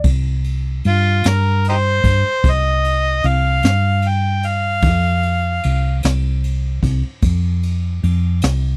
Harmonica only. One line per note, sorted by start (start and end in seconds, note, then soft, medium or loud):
0.88 1.30 F4 loud
1.28 1.65 A#4 medium
1.69 1.76 D#4 medium
1.69 1.76 G4 medium
1.69 2.52 C5 loud
2.50 3.28 D#5 medium
3.27 4.10 F5 medium
4.08 4.48 G5 medium
4.47 6.01 F5 medium